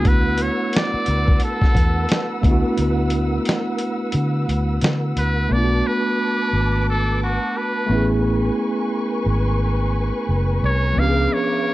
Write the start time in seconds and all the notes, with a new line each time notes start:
Already playing: D2 A3 B3 D4 E4 F#4 B4 F#5 E6
0.05 B4, kick, closed hi-hat
0.38 closed hi-hat
0.42 C#5
0.73 D5, snare, closed hi-hat
0.94 muted fingered electric bass stroke
1.06 D2, closed hi-hat
1.28 kick
1.40 closed hi-hat
1.44 A4
1.62 kick, snare
1.75 E2, kick, closed hi-hat
2.09 snare, closed hi-hat
2.42 D2 A3 B3, kick, closed hi-hat
2.46 D4 E4
2.51 F#4
2.77 D2, closed hi-hat
3.10 closed hi-hat
3.45 snare, closed hi-hat
3.78 closed hi-hat
4.12 D3, closed hi-hat
4.49 D2, closed hi-hat
4.81 D3, snare, closed hi-hat
5.17 D2 B4, closed hi-hat
5.49 B1 A3 B3 B4 D5 A5 D6
5.55 D4 F4
5.64 F#4
5.87 B4
6.53 G#1
6.90 A4
7.23 F#4
7.58 B4
7.87 A1 A3 B3 G#5 C#6
7.91 C#4 E4
7.95 G#4
9.26 G#1
10.29 F#1
10.63 C2 C#5
10.93 C#2 F3 B3 F5 D6
10.98 C#4 D4 F5
11.02 G4
11.08 G#4
11.33 C#5